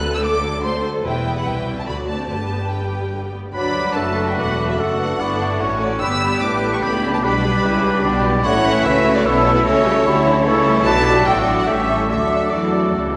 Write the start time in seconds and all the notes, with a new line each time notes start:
Already playing: D2 A4 B4 F#6
0.02 A3
0.13 C4 E6
0.23 A3 A4 D6
0.33 F#3
0.43 D3
0.53 F#3
0.63 A3 C5 C6
0.74 C4
0.84 A3
0.93 F#3
1.04 E1 E2 E3 E4 B4 G5
1.14 G3
1.25 B3
1.35 G3 F#5
1.45 C2 C3 G5
1.56 E3
1.65 G3
1.76 C4 A5
1.86 D2 D3 F#4 D5 B5
1.97 F#3
2.07 A3 A5
2.17 C4
2.28 G1 G2 D3 G4 B4 A5
2.40 G3
2.49 B3
2.59 G3
2.69 D3 G5
2.79 G3
2.91 B3
3.02 G3
3.12 D3
3.22 G3
3.32 B3
3.44 G3
3.54 D2 F#3 D4 F#4 B4 D5 B5 D6
3.75 G3
3.95 F#1 F#2 F#3 A3 D4 F#4 A4 A5 E6
4.27 G5
4.36 E1 E2 F#3 D4 B4 F#5 D6
4.69 E5
4.77 F#1 F#2 A3 D4 F#4 A4 F#5 C#6
4.99 B3
5.19 G1 G2 B3 D4 E4 D5
5.39 D4 E4
5.60 A1 A2 A3 C#4 F#4 C#5
5.79 A3 D5
6.00 G1 G2 G3 B3 D4 G4 B4 D5 B5 E6
6.22 B3 B5
6.42 A1 A2 A3 B3 D4 B4 B5 D6
6.73 C#6
6.81 C#2 C#3 B3 D4 E4 G4 B4 B5 D6
7.14 A5
7.23 B1 B2 G3 D4 G4 B4 D5 B5 D6
7.44 G3 B4
7.63 C#2 C#3 E4 B4
7.84 D4
8.04 B1 B2 D4 G4 D5 B5
8.25 E4
8.44 A1 A2 A3 C#4 F#4 C#5 F#5 C#6
8.65 E4 B4
8.84 C#2 C#3 A3 B3 C#4 E4 F#4 C#5 E5 E6
9.16 D5
9.25 B1 B2 A3 B3 C#4 E4 A4 C#5
9.55 B4
9.63 C#2 C#3 A3 C#4 F#4 A4 C#5
9.68 A3 C#4
9.85 G3
10.05 D2 D3 F#3 G3 E4
10.25 E3 F#3
10.45 C#2 C#3 E3 A3 E4 A4 C#5 E6
10.65 G3
10.85 B1 B2 F#3 D4 F#4 B4 D5 A5 D6
11.06 F#3 G3
11.26 A1 A2 F#3 A3 B3 D4 F#4 A4 D5 G5 D6
11.58 F#5
11.67 A1 A2 G3 A3 C#4 G4 A4 E5 C#6
11.90 A4
12.10 D2 D3 F#3 A3 D4 F#4 A4 E5 D6
12.52 E2 E3 F#3 A3 F#4 A4 D5 D6
12.95 C#2 C#3 E3